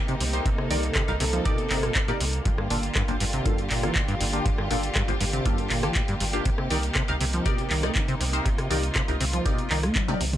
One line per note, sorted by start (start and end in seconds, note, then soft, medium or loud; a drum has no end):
0.00 2.42 C3 medium
0.00 6.41 A#3 medium
0.00 2.42 D#4 medium
0.00 0.44 G4 medium
0.08 0.15 C3 loud
0.08 closed hi-hat soft
0.20 0.41 C2 loud
0.20 0.25 C3 medium
0.20 open hi-hat loud
0.33 0.45 D#4 loud
0.33 0.45 G4 medium
0.33 0.45 A#4 medium
0.33 0.45 C5 loud
0.33 closed hi-hat medium
0.45 0.50 C3 loud
0.45 2.44 A4 medium
0.45 kick loud
0.45 closed hi-hat medium
0.58 0.68 C3 medium
0.58 cross-stick medium
0.70 0.90 C2 loud
0.70 0.78 D#3 medium
0.70 0.83 D#4 medium
0.70 0.83 G4 medium
0.70 0.83 A#4 medium
0.70 0.83 D5 loud
0.70 open hi-hat loud
0.83 closed hi-hat medium
0.95 1.03 C3 loud
0.95 kick loud
0.95 cross-stick medium
0.95 clap loud
0.95 closed hi-hat medium
1.08 1.12 C2 loud
1.08 1.18 C2 medium
1.08 1.16 D#4 medium
1.08 1.16 G4 medium
1.08 1.16 A#4 medium
1.08 1.16 F5 medium
1.08 closed hi-hat soft
1.20 1.40 C2 medium
1.20 1.25 C3 loud
1.20 open hi-hat loud
1.33 1.47 F3 medium
1.33 closed hi-hat medium
1.45 1.59 A#2 loud
1.45 1.68 D#4 medium
1.45 1.68 G4 medium
1.45 1.68 A#4 medium
1.45 1.68 D5 loud
1.45 kick loud
1.45 closed hi-hat medium
1.58 1.68 C3 medium
1.58 closed hi-hat soft
1.70 1.90 G1 medium
1.70 1.85 C3 medium
1.70 1.78 D#4 medium
1.70 1.78 G4 medium
1.70 1.78 A#4 medium
1.70 1.78 D5 medium
1.70 clap medium
1.70 open hi-hat loud
1.83 1.93 A#2 medium
1.83 cross-stick medium
1.83 closed hi-hat soft
1.95 2.00 C4 medium
1.95 kick loud
1.95 clap loud
1.95 closed hi-hat medium
2.08 2.12 A#2 loud
2.08 2.20 D#4 medium
2.08 2.20 G4 medium
2.08 2.20 A#4 medium
2.08 2.20 D5 loud
2.08 closed hi-hat soft
2.20 2.40 C2 medium
2.20 2.25 C3 medium
2.20 open hi-hat loud
2.33 closed hi-hat medium
2.45 2.50 G2 loud
2.45 6.41 D3 medium
2.45 6.41 F4 medium
2.45 8.41 G4 medium
2.45 kick loud
2.45 closed hi-hat medium
2.58 2.68 G2 medium
2.58 cross-stick medium
2.70 2.91 G1 loud
2.70 2.77 A#2 medium
2.70 2.83 A#3 loud
2.70 2.83 D4 medium
2.70 2.83 F4 medium
2.70 2.83 A4 loud
2.70 open hi-hat loud
2.83 closed hi-hat medium
2.95 3.03 G2 loud
2.95 kick loud
2.95 cross-stick medium
2.95 clap loud
2.95 closed hi-hat medium
3.08 3.18 G1 medium
3.08 3.12 G1 loud
3.08 3.16 A#3 medium
3.08 3.16 D4 medium
3.08 3.16 F4 medium
3.08 3.16 C5 medium
3.08 closed hi-hat soft
3.20 3.40 G1 medium
3.20 3.25 G2 loud
3.20 open hi-hat loud
3.33 3.47 C3 medium
3.33 closed hi-hat medium
3.45 3.60 F2 loud
3.45 3.80 A#3 medium
3.45 3.80 D4 medium
3.45 3.80 F4 medium
3.45 3.80 A4 loud
3.45 kick loud
3.45 closed hi-hat medium
3.58 3.68 G2 medium
3.58 closed hi-hat soft
3.70 3.91 G1 medium
3.70 3.85 A#2 medium
3.70 clap medium
3.70 open hi-hat loud
3.83 3.97 F3 loud
3.83 3.91 A#3 loud
3.83 3.91 D4 medium
3.83 3.91 F4 medium
3.83 3.91 A4 loud
3.83 cross-stick medium
3.83 closed hi-hat medium
3.95 4.03 G2 loud
3.95 kick loud
3.95 clap loud
3.95 closed hi-hat medium
4.08 4.15 G2 loud
4.08 closed hi-hat soft
4.21 4.41 G1 loud
4.21 4.25 G2 medium
4.21 open hi-hat loud
4.33 4.45 A#3 loud
4.33 4.45 D4 medium
4.33 4.45 F4 medium
4.33 4.45 G4 loud
4.33 closed hi-hat medium
4.46 4.50 G2 loud
4.46 kick loud
4.46 closed hi-hat medium
4.58 4.68 G2 medium
4.58 cross-stick medium
4.70 4.90 G1 loud
4.70 4.78 A#2 medium
4.70 4.83 A#3 medium
4.70 4.83 D4 medium
4.70 4.83 F4 medium
4.70 4.83 A4 loud
4.70 open hi-hat loud
4.83 closed hi-hat medium
4.95 5.03 G2 loud
4.95 kick loud
4.95 cross-stick medium
4.95 clap loud
4.95 closed hi-hat medium
5.08 5.12 G1 loud
5.08 5.18 G1 medium
5.08 5.16 A#3 medium
5.08 5.16 D4 medium
5.08 5.16 F4 medium
5.08 5.16 C5 medium
5.08 closed hi-hat soft
5.21 5.41 G1 medium
5.21 5.25 G2 loud
5.21 open hi-hat loud
5.33 5.47 C3 medium
5.33 closed hi-hat medium
5.45 5.60 F2 loud
5.45 5.80 A#3 medium
5.45 5.80 D4 medium
5.45 5.80 F4 medium
5.45 5.80 A4 loud
5.45 kick loud
5.45 closed hi-hat medium
5.58 5.68 G2 medium
5.58 closed hi-hat soft
5.70 5.91 G1 medium
5.70 5.84 A#2 medium
5.70 clap medium
5.70 open hi-hat loud
5.83 5.97 F3 loud
5.83 5.91 A#3 loud
5.83 5.91 D4 medium
5.83 5.91 F4 medium
5.83 5.91 A4 loud
5.83 cross-stick medium
5.83 closed hi-hat medium
5.95 6.03 G2 loud
5.95 kick loud
5.95 clap loud
5.95 closed hi-hat medium
6.08 6.15 G2 loud
6.08 closed hi-hat soft
6.20 6.41 G1 loud
6.20 6.25 G2 medium
6.20 open hi-hat loud
6.33 6.44 A#3 loud
6.33 6.44 D4 medium
6.33 6.44 F4 medium
6.33 6.44 G4 loud
6.33 closed hi-hat medium
6.45 10.37 C3 medium
6.45 6.50 C3 loud
6.45 10.37 A#3 medium
6.45 10.37 D#4 medium
6.45 kick loud
6.45 closed hi-hat medium
6.58 6.68 C3 medium
6.58 cross-stick medium
6.70 6.91 C2 loud
6.70 6.78 D#3 medium
6.70 6.83 D#4 loud
6.70 6.83 G4 medium
6.70 6.83 A#4 medium
6.70 6.83 D5 loud
6.70 open hi-hat loud
6.83 closed hi-hat medium
6.95 7.03 C3 loud
6.95 kick loud
6.95 cross-stick medium
6.95 clap loud
6.95 closed hi-hat medium
7.08 7.18 C2 medium
7.08 7.12 C2 loud
7.08 7.16 D#4 medium
7.08 7.16 G4 medium
7.08 7.16 A#4 medium
7.08 7.16 F5 loud
7.08 closed hi-hat soft
7.21 7.41 C2 medium
7.21 7.25 C3 loud
7.21 open hi-hat loud
7.33 7.47 F3 medium
7.33 closed hi-hat medium
7.46 7.60 A#2 loud
7.46 7.80 D#4 medium
7.46 7.80 G4 medium
7.46 7.80 A#4 medium
7.46 7.80 D5 loud
7.46 kick loud
7.46 closed hi-hat medium
7.58 7.68 C3 medium
7.58 closed hi-hat soft
7.70 7.91 C2 medium
7.70 7.85 D#3 medium
7.70 clap medium
7.70 open hi-hat loud
7.83 7.97 A#3 loud
7.83 7.90 D#4 medium
7.83 7.90 G4 medium
7.83 7.90 A#4 medium
7.83 7.90 D5 loud
7.83 cross-stick medium
7.83 closed hi-hat medium
7.95 8.02 C3 loud
7.95 kick loud
7.95 clap loud
7.95 closed hi-hat medium
8.08 8.15 C3 loud
8.08 closed hi-hat soft
8.20 8.41 C2 loud
8.20 8.25 C3 medium
8.20 open hi-hat loud
8.33 8.45 D#4 loud
8.33 8.45 G4 medium
8.33 8.45 A#4 medium
8.33 8.45 C5 loud
8.33 closed hi-hat medium
8.45 8.50 C3 loud
8.45 10.37 F4 medium
8.45 kick loud
8.45 closed hi-hat medium
8.58 8.68 C3 medium
8.58 cross-stick medium
8.58 closed hi-hat soft
8.70 8.91 C2 loud
8.70 8.78 D#3 medium
8.70 8.83 D#4 medium
8.70 8.83 G4 medium
8.70 8.83 A#4 medium
8.70 8.82 D5 loud
8.70 open hi-hat loud
8.83 closed hi-hat medium
8.95 9.03 C3 loud
8.95 kick loud
8.95 cross-stick medium
8.95 clap loud
8.95 closed hi-hat medium
9.08 9.12 C2 loud
9.08 9.18 C2 medium
9.08 9.16 D#4 medium
9.08 9.16 G4 medium
9.08 9.16 A#4 medium
9.08 9.16 F5 medium
9.08 closed hi-hat soft
9.21 9.41 C2 medium
9.21 9.25 C3 loud
9.21 open hi-hat loud
9.33 9.47 F3 medium
9.33 closed hi-hat medium
9.45 9.60 A#2 loud
9.45 9.68 D#4 medium
9.45 9.68 G4 medium
9.45 9.68 A#4 medium
9.45 9.68 D5 loud
9.45 kick loud
9.45 closed hi-hat medium
9.58 9.68 C3 medium
9.58 closed hi-hat soft
9.70 9.91 C2 medium
9.70 9.85 D#3 medium
9.70 9.78 D#4 medium
9.70 9.78 G4 medium
9.70 9.78 A#4 medium
9.70 9.78 D5 medium
9.70 clap medium
9.70 open hi-hat loud
9.83 9.97 A#3 loud
9.83 cross-stick medium
9.83 closed hi-hat medium
9.95 10.03 C3 loud
9.95 kick loud
9.95 clap loud
9.95 closed hi-hat medium
9.95 high tom medium
10.08 10.15 C3 loud
10.08 10.20 D#4 medium
10.08 10.20 G4 medium
10.08 10.20 A#4 medium
10.08 10.20 D5 loud
10.08 closed hi-hat soft
10.08 high tom medium
10.21 10.37 C2 medium
10.21 10.25 C3 medium
10.21 open hi-hat loud
10.33 closed hi-hat medium
10.33 mid tom medium